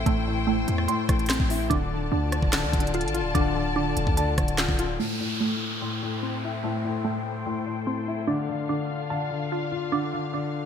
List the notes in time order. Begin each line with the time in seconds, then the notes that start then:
Already playing: A2 C4 E4 A4 C5 G5 C6
0.06 A1 A2 A3, kick, closed hi-hat
0.27 A2
0.47 A2 A3
0.68 E2, closed hi-hat
0.78 cross-stick
0.88 A2 C6, closed hi-hat
1.09 A1 A2, kick, cross-stick, closed hi-hat
1.19 closed hi-hat
1.26 C4, snare, clap, closed hi-hat
1.33 closed hi-hat
1.40 A1, kick
1.50 E4, open hi-hat
1.70 D1 D3 D4 F4 A4 D5 A5, kick, closed hi-hat
1.91 D3
2.12 D2 D3 D4
2.32 cross-stick, closed hi-hat
2.42 D1, kick
2.53 D3 A5, snare, clap, closed hi-hat
2.63 D2
2.73 D1 D3, kick, closed hi-hat
2.80 closed hi-hat
2.87 closed hi-hat
2.94 F4, closed hi-hat
3.01 A1, closed hi-hat
3.08 closed hi-hat
3.14 F4, closed hi-hat
3.20 D1
3.35 D1 D3 D4, kick, closed hi-hat
3.56 D3
3.76 D3 D4
3.97 D1, closed hi-hat
4.07 D2, kick
4.17 D3 A5, closed hi-hat
4.38 D1 D3, kick, cross-stick, closed hi-hat
4.48 closed hi-hat
4.58 F4, snare, clap
4.69 D1, kick
4.79 F4, closed hi-hat
4.99 A2 A3 E4 A4 C5 G5, downlifter
5.20 A2
5.40 A2 A3
5.81 A2 C6
6.02 A2
6.23 C4
6.44 E4
6.64 A2 A3
6.85 A2
7.05 A2 A3
7.46 A2 C6
7.66 A2
7.87 C4
8.08 E4
8.28 D3 D4 F4 F5
8.49 D3
8.69 D3 D4
9.10 D3 A5
9.31 D3
9.52 F4
9.72 F4
9.92 D3 D4
10.13 D3
10.34 D3 D4